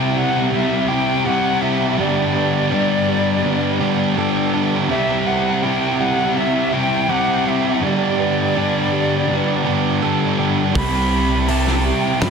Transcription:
0.00 0.15 C3 medium
0.00 0.50 C3 medium
0.00 0.16 G3 medium
0.00 0.52 G3 medium
0.00 1.24 G3 medium
0.00 0.53 C4 medium
0.00 0.89 C4 medium
0.00 0.88 E4 medium
0.00 0.88 G4 medium
0.00 0.19 G5 medium
0.17 1.98 G3 medium
0.17 0.53 F#5 loud
0.51 1.24 C3 loud
0.51 0.91 G3 loud
0.51 0.87 C4 loud
0.51 0.90 E5 medium
0.88 1.26 G3 medium
0.88 1.27 C4 medium
0.88 1.24 C4 medium
0.88 1.25 E4 medium
0.88 1.26 G4 medium
0.88 1.27 G5 loud
1.24 1.96 C3 medium
1.24 1.98 G3 medium
1.24 2.00 G3 medium
1.24 1.62 C4 medium
1.24 1.97 C4 medium
1.24 1.61 E4 medium
1.24 1.60 G4 medium
1.24 1.63 F#5 loud
1.61 1.97 C4 medium
1.61 1.96 E4 medium
1.61 1.99 G4 medium
1.61 1.98 E5 loud
1.97 2.69 G2 medium
1.97 3.07 G2 medium
1.97 3.07 D3 medium
1.97 2.71 D3 loud
1.97 2.70 G3 loud
1.97 2.73 G3 loud
1.97 2.71 B3 loud
1.97 2.71 D4 medium
1.97 2.73 G4 loud
1.97 4.50 D5 loud
2.35 3.44 B3 medium
2.70 3.42 G2 medium
2.70 3.43 D3 medium
2.70 3.82 G3 medium
2.70 3.46 G3 medium
2.70 3.81 B3 medium
2.70 3.80 D4 medium
2.70 3.80 G4 medium
3.08 4.90 G3 medium
3.43 4.14 G2 loud
3.43 3.82 D3 loud
3.43 3.80 G3 loud
3.43 6.95 B3 medium
3.80 4.16 D3 medium
3.80 4.18 G3 medium
3.80 4.16 G3 medium
3.80 4.17 B3 medium
3.80 4.17 D4 medium
3.80 4.18 G4 medium
4.16 4.87 G2 medium
4.16 4.88 D3 medium
4.16 4.55 G3 medium
4.16 4.90 G3 medium
4.16 4.55 B3 medium
4.16 4.53 D4 medium
4.16 4.53 G4 medium
4.16 4.90 A4 medium
4.54 4.90 G3 medium
4.54 4.90 B3 medium
4.54 4.88 D4 medium
4.54 4.92 G4 medium
4.89 5.62 C3 loud
4.89 5.99 C3 medium
4.89 5.62 G3 loud
4.89 5.64 G3 loud
4.89 5.62 C4 loud
4.89 5.65 C4 loud
4.89 5.63 E4 medium
4.89 5.65 G4 medium
4.89 5.28 E5 loud
5.26 5.64 F#5 medium
5.63 6.35 C3 medium
5.63 7.08 G3 medium
5.63 6.37 G3 medium
5.63 6.74 C4 medium
5.63 6.37 C4 medium
5.63 6.73 E4 medium
5.63 6.72 G4 medium
5.63 6.01 G5 loud
6.00 7.82 G3 medium
6.00 6.38 F#5 loud
6.36 7.07 C3 loud
6.36 6.75 G3 loud
6.36 6.71 C4 loud
6.36 6.75 E5 loud
6.72 7.10 G3 medium
6.72 7.10 C4 medium
6.72 7.09 C4 medium
6.72 7.09 E4 medium
6.72 7.11 G4 medium
6.72 7.11 G5 loud
7.08 7.79 C3 medium
7.08 7.82 G3 medium
7.08 7.84 G3 medium
7.08 7.46 C4 medium
7.08 7.81 C4 medium
7.08 7.45 E4 medium
7.08 7.45 G4 medium
7.08 7.50 F#5 loud
7.45 7.81 C4 medium
7.45 7.80 E4 medium
7.45 7.84 G4 medium
7.45 7.83 E5 loud
7.81 8.53 G2 loud
7.81 8.92 G2 medium
7.81 8.92 D3 medium
7.81 8.55 D3 loud
7.81 8.55 G3 medium
7.81 8.57 G3 loud
7.81 8.56 B3 loud
7.81 8.56 D4 loud
7.81 8.57 G4 medium
7.81 10.35 D5 loud
8.19 9.28 B3 medium
8.54 9.27 G2 medium
8.54 9.28 D3 medium
8.54 9.67 G3 medium
8.54 9.31 G3 medium
8.54 9.66 B3 medium
8.54 9.65 D4 medium
8.54 9.64 G4 medium
8.92 10.75 G3 medium
9.28 10.00 G2 loud
9.28 9.66 D3 loud
9.28 9.63 G3 loud
9.28 12.30 B3 medium
9.64 10.02 D3 medium
9.64 10.03 G3 medium
9.64 10.01 G3 medium
9.64 10.02 B3 medium
9.64 10.02 D4 medium
9.64 10.03 G4 medium
10.01 10.72 G2 medium
10.01 10.73 D3 medium
10.01 10.40 G3 medium
10.01 10.75 G3 medium
10.01 10.39 B3 medium
10.01 10.38 D4 medium
10.01 10.38 G4 medium
10.01 10.75 A4 medium
10.38 10.75 G3 medium
10.38 10.76 B3 medium
10.38 10.73 D4 medium
10.38 10.77 G4 medium
10.74 11.91 C2 loud
10.74 11.46 C3 medium
10.74 11.85 C3 medium
10.74 11.47 G3 loud
10.74 11.49 G3 loud
10.74 11.47 C4 medium
10.74 11.49 C4 loud
10.74 11.48 E4 medium
10.74 11.50 G4 loud
10.74 11.50 B5 loud
10.74 kick loud
10.74 open hi-hat medium
11.48 12.19 C3 medium
11.48 12.30 G3 medium
11.48 12.22 G3 medium
11.48 12.30 C4 medium
11.48 12.23 C4 medium
11.48 12.30 E4 medium
11.48 12.30 G4 medium
11.48 11.86 A5 medium
11.48 open hi-hat medium
11.67 snare soft
11.85 12.30 G3 medium
11.85 12.22 G5 medium
12.21 12.30 G2 loud
12.21 12.30 C3 loud
12.21 12.30 G3 medium
12.21 12.30 C4 loud
12.21 12.30 B5 loud
12.21 snare loud
12.21 open hi-hat medium

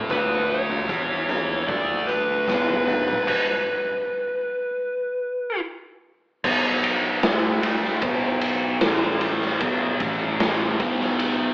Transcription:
0.10 0.85 D2 medium
0.10 0.89 D3 loud
0.10 0.89 A3 loud
0.10 0.89 D4 medium
0.10 0.52 B4 medium
0.10 kick loud
0.10 floor tom medium
0.10 tambourine medium
0.50 1.67 C#5 medium
0.50 tambourine soft
0.69 floor tom medium
0.89 1.64 E2 medium
0.89 1.67 E3 medium
0.89 1.68 B3 loud
0.89 1.68 E4 loud
0.89 kick loud
0.89 tambourine medium
1.29 floor tom medium
1.29 tambourine medium
1.68 2.44 D2 loud
1.68 2.46 D3 loud
1.68 2.47 A3 loud
1.68 2.47 D4 medium
1.68 2.09 D5 loud
1.68 kick loud
1.68 floor tom medium
2.07 5.60 B4 medium
2.07 tambourine medium
2.48 3.23 B1 medium
2.48 3.26 B2 medium
2.48 3.26 F#3 loud
2.48 3.26 B3 loud
2.48 kick medium
2.48 snare medium
2.48 floor tom medium
2.48 tambourine medium
2.68 floor tom medium
2.87 floor tom medium
2.87 tambourine medium
3.08 mid tom medium
3.27 kick loud
3.27 crash medium
6.44 7.19 B1 loud
6.44 7.22 B2 loud
6.44 7.22 F#3 loud
6.44 7.22 B3 loud
6.44 kick loud
6.44 crash loud
6.84 ride medium
7.23 7.98 D2 medium
7.23 8.01 D3 medium
7.23 8.01 A3 medium
7.23 8.02 D4 loud
7.23 snare loud
7.23 ride loud
7.63 ride medium
7.83 snare soft
8.02 8.77 B1 medium
8.02 8.81 B2 medium
8.02 8.81 F#3 medium
8.02 8.81 B3 loud
8.02 kick loud
8.02 ride loud
8.41 ride medium
8.81 9.57 A1 medium
8.81 9.60 A2 medium
8.81 9.60 E3 loud
8.81 9.60 A3 loud
8.81 snare medium
8.81 ride loud
9.21 ride medium
9.41 snare soft
9.60 9.98 B1 medium
9.60 10.01 B2 medium
9.60 10.02 F#3 medium
9.60 10.02 B3 loud
9.60 kick loud
9.60 ride loud
10.00 10.76 A1 loud
10.00 10.79 A2 medium
10.00 10.80 E3 medium
10.00 10.80 A3 loud
10.00 kick loud
10.00 ride medium
10.40 snare loud
10.40 ride medium
10.80 11.54 B1 loud
10.80 11.54 B2 loud
10.80 11.54 F#3 loud
10.80 11.54 B3 loud
10.80 kick loud
10.80 ride medium
11.00 snare soft
11.19 ride loud

